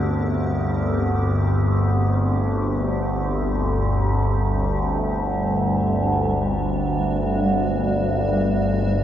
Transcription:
0.00 9.04 G1 medium
0.00 9.04 D2 medium
0.00 8.81 C4 medium
0.00 4.67 G4 medium
0.00 4.68 A#4 medium
4.67 9.04 G3 medium
5.29 9.04 F#4 medium
5.36 9.04 D4 medium
8.36 9.04 C5 medium

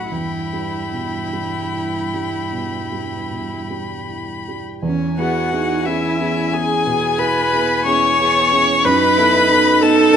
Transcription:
0.00 0.15 F#2 soft
0.00 0.13 A2 soft
0.00 0.15 F#3 soft
0.00 0.14 D#4 soft
0.00 0.10 F#4 medium
0.00 0.15 F#5 soft
0.00 0.12 B5 soft
0.11 2.49 E2 soft
0.11 4.64 G2 soft
0.11 3.65 E4 medium
0.11 4.65 G5 soft
0.11 4.61 B5 soft
0.53 1.17 G3 soft
0.92 1.57 B2 soft
1.33 1.98 G3 soft
1.74 2.38 E4 soft
2.14 2.77 G3 soft
2.52 3.15 B2 soft
2.92 3.54 G3 soft
3.31 3.93 B2 soft
3.70 4.33 G3 soft
4.09 4.70 E4 soft
4.48 4.84 G3 soft
4.82 5.16 E2 medium
4.82 5.19 C#4 medium
4.82 8.81 G#5 medium
5.17 5.55 B3 medium
5.17 5.49 B3 soft
5.17 5.49 E4 soft
5.17 5.87 F#4 medium
5.17 5.50 G#4 medium
5.17 5.87 F#5 medium
5.50 5.82 B3 soft
5.50 5.88 D#4 medium
5.50 5.82 E4 soft
5.50 5.83 G#4 soft
5.85 6.16 B3 soft
5.85 6.88 C#4 medium
5.85 6.55 E4 medium
5.85 6.16 E4 soft
5.85 6.17 G#4 soft
5.85 6.55 E5 medium
6.20 6.50 B3 soft
6.20 6.50 E4 soft
6.20 6.50 G#4 medium
6.52 6.83 B3 soft
6.52 6.83 E4 soft
6.52 6.83 G#4 soft
6.52 7.21 G#4 medium
6.52 7.21 G#5 medium
6.86 7.19 B2 medium
6.86 7.86 B3 medium
7.18 7.49 B3 soft
7.18 7.49 E4 soft
7.18 7.50 G#4 medium
7.18 7.86 B4 medium
7.18 7.85 B5 medium
7.53 7.83 B3 soft
7.53 7.83 E4 soft
7.53 7.83 G#4 medium
7.84 8.16 B3 medium
7.84 8.19 C#4 medium
7.84 8.16 E4 medium
7.84 8.16 G#4 medium
7.84 8.86 C#5 loud
7.84 8.88 C#6 medium
8.19 8.54 B3 medium
8.19 8.49 B3 soft
8.19 8.50 E4 medium
8.19 8.50 G#4 medium
8.52 8.82 B3 medium
8.52 8.86 C#4 medium
8.52 8.82 E4 medium
8.52 8.82 G#4 medium
8.84 9.16 F#2 medium
8.84 9.18 D#4 medium
8.84 9.83 B4 loud
8.84 10.17 D#5 medium
8.84 9.84 B5 loud
9.17 9.47 B3 medium
9.17 9.46 D#4 medium
9.17 9.51 E4 medium
9.17 9.47 A4 medium
9.49 9.79 B3 medium
9.49 10.17 D#4 medium
9.49 9.79 D#4 medium
9.49 9.80 A4 medium
9.81 10.11 B3 medium
9.81 10.12 D#4 medium
9.81 10.17 A4 loud
9.81 10.12 A4 medium
9.81 10.17 A5 medium
10.13 10.17 B3 medium
10.13 10.17 D#4 medium

